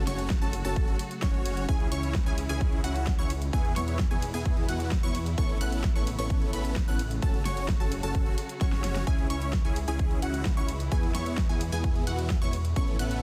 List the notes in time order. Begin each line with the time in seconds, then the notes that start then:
Already playing: C#3 F#3 A3 F#4
0.07 F#1 C#4 F#4 C#5 C#6, snare, open hi-hat, ride
0.19 closed hi-hat
0.30 kick, snare, closed hi-hat
0.42 F#1 C#4 F#4 A4 A5, closed hi-hat
0.53 open hi-hat, ride
0.65 F#1 C#4 F#4 A4 A5, closed hi-hat
0.76 kick, closed hi-hat
0.88 closed hi-hat
0.99 open hi-hat, ride
1.11 closed hi-hat
1.22 F#1 C#4 F#4 C#5 C#6, kick, snare, closed hi-hat
1.34 closed hi-hat
1.46 open hi-hat, ride
1.57 closed hi-hat
1.69 C#2 C#3 E3 G#3 C#4 E4 G#4 G#5, kick, closed hi-hat
1.80 closed hi-hat
1.92 C#2 C#4 E4 C#5 C#6, open hi-hat, ride
2.03 closed hi-hat
2.14 kick, snare, closed hi-hat
2.26 C#2 C#4 E4 G#4 G#5, closed hi-hat
2.38 open hi-hat, ride
2.49 C#2 C#4 E4 G#4 G#5, closed hi-hat
2.61 kick, closed hi-hat
2.72 closed hi-hat
2.84 C#2 C#4 E4 F#4 F#5, open hi-hat, ride
2.96 closed hi-hat
3.07 kick, snare, closed hi-hat
3.19 C#2 C#4 E4 C#5 C#6, closed hi-hat
3.30 open hi-hat, ride
3.42 closed hi-hat
3.53 E2 B2 E3 G#3 B3 E4 G#4 G#5, kick, closed hi-hat
3.65 closed hi-hat
3.76 E2 B3 E4 C#5 C#6, snare, open hi-hat, ride
3.88 closed hi-hat
3.99 kick, snare, closed hi-hat
4.11 E2 B3 E4 G#4 G#5, closed hi-hat
4.22 open hi-hat, ride
4.34 E2 B3 E4 G#4 G#5, closed hi-hat
4.45 kick, closed hi-hat
4.57 closed hi-hat
4.69 E2 B3 E4 F#4 F#5, open hi-hat, ride
4.80 closed hi-hat
4.91 kick, snare, closed hi-hat
5.03 E2 B3 E4 C#5 C#6, closed hi-hat
5.15 open hi-hat, ride
5.26 closed hi-hat
5.38 A1 C#3 A3 B3 C#4 E4 A4 C#5 C#6, kick, closed hi-hat
5.49 closed hi-hat
5.61 A1 B3 C#4 E4 A4 F#5 F#6, open hi-hat, ride
5.72 closed hi-hat
5.84 kick, snare, closed hi-hat
5.95 A1 B3 C#4 E4 A4 C#5 C#6, closed hi-hat
6.07 open hi-hat, ride
6.19 A1 B3 C#4 E4 A4 C#5 C#6, closed hi-hat
6.30 kick, closed hi-hat
6.42 closed hi-hat
6.53 A1 B3 C#4 E4 A4 B4 B5, open hi-hat, ride
6.65 closed hi-hat
6.76 kick, snare, closed hi-hat
6.88 A1 B3 C#4 E4 A4 F#5 F#6, closed hi-hat
6.99 open hi-hat, ride
7.11 closed hi-hat
7.22 F#3 C#4 F#4 A4 A5, kick, closed hi-hat
7.34 closed hi-hat
7.45 F#1 C#4 F#4 C#5 C#6, snare, open hi-hat, ride
7.57 closed hi-hat
7.68 kick, snare, closed hi-hat
7.80 F#1 C#4 F#4 A4 A5, closed hi-hat
7.92 open hi-hat, ride
8.03 F#1 C#4 F#4 A4 A5, closed hi-hat
8.15 kick, closed hi-hat
8.26 closed hi-hat
8.38 open hi-hat, ride
8.49 closed hi-hat
8.61 F#1 C#4 F#4 C#5 C#6, kick, snare, closed hi-hat
8.72 snare, closed hi-hat
8.84 snare, open hi-hat, ride
8.95 snare, closed hi-hat
9.07 E3 G#3 C#4 E4 G#4 G#5, kick, closed hi-hat
9.19 closed hi-hat
9.30 C#2 C#4 E4 C#5 C#6, open hi-hat, ride
9.42 closed hi-hat
9.53 kick, snare, closed hi-hat
9.65 C#2 C#4 E4 G#4 G#5, closed hi-hat
9.76 open hi-hat, ride
9.88 C#2 C#4 E4 G#4 G#5, closed hi-hat
9.99 kick, closed hi-hat
10.11 closed hi-hat
10.22 C#2 C#4 E4 F#4 F#5, open hi-hat, ride
10.34 closed hi-hat
10.45 kick, snare, closed hi-hat
10.57 C#2 C#4 E4 C#5 C#6, closed hi-hat
10.69 open hi-hat, ride
10.80 closed hi-hat
10.92 B2 B3 E4 G#4 G#5, kick, closed hi-hat
11.03 closed hi-hat
11.14 E2 B3 E4 C#5 C#6, snare, open hi-hat, ride
11.26 closed hi-hat
11.37 kick, snare, closed hi-hat
11.49 E2 B3 E4 G#4 G#5, closed hi-hat
11.61 open hi-hat, ride
11.72 E2 B3 E4 G#4 G#5, closed hi-hat
11.84 kick, closed hi-hat
11.95 closed hi-hat
12.07 E2 B3 E4 F#4 F#5, open hi-hat, ride
12.19 closed hi-hat
12.30 kick, snare, closed hi-hat
12.42 E2 B3 E4 C#5 C#6, closed hi-hat
12.53 open hi-hat, ride
12.65 closed hi-hat
12.76 A1 C#3 A3 B3 C#4 E4 A4 C#5 C#6, kick, closed hi-hat
12.88 closed hi-hat
12.99 A1 B3 C#4 E4 A4 F#5 F#6, open hi-hat, ride
13.11 closed hi-hat